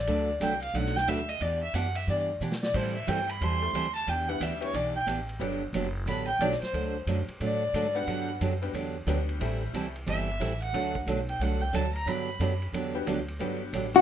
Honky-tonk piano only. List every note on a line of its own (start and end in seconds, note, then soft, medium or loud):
3.07 3.26 G3 medium
3.07 3.26 A3 medium
3.07 3.26 C4 medium
3.07 3.27 E4 medium
3.07 3.27 G4 medium
3.61 3.72 G3 medium
3.61 3.73 A3 medium
3.61 3.73 C4 medium
3.61 3.73 E4 medium
3.61 3.73 A4 medium
4.28 4.59 G3 medium
4.28 4.59 B3 medium
4.28 4.60 D4 medium
4.28 4.60 E4 medium
4.28 4.60 G4 medium
4.60 4.72 G3 medium
4.60 4.72 B3 medium
4.60 4.72 D4 medium
4.60 4.73 E4 medium
4.60 4.72 G4 medium
5.39 5.59 G3 medium
5.39 5.59 B3 medium
5.39 5.59 D4 medium
5.39 5.59 F#4 medium
5.39 5.60 G4 medium
7.95 8.38 G3 medium
7.95 8.38 B3 medium
7.95 8.38 D4 medium
7.95 8.38 F#4 medium
7.95 8.38 G4 medium
8.62 8.72 G3 medium
8.62 8.73 B3 medium
8.62 8.73 D4 medium
8.62 8.73 F#4 medium
8.62 8.73 G4 medium
9.07 9.39 G3 medium
9.07 9.41 B3 medium
9.07 9.41 D4 medium
9.07 9.41 F#4 medium
9.07 9.40 G4 medium
9.40 9.91 G3 medium
9.40 9.91 A3 medium
9.40 9.91 C4 medium
9.40 9.91 E4 medium
9.40 9.91 G4 medium
10.74 10.93 F#3 medium
10.74 10.93 A3 medium
10.74 10.93 D4 medium
10.74 10.93 F#4 medium
10.74 10.93 A4 medium
12.94 13.05 G3 medium
12.94 13.05 B3 medium
12.94 13.05 D4 medium
12.94 13.06 F#4 medium
12.94 13.06 G4 medium
13.40 14.01 G3 medium
13.40 14.01 B3 medium
13.40 14.01 D4 medium
13.40 14.01 F#4 medium
13.40 14.01 G4 medium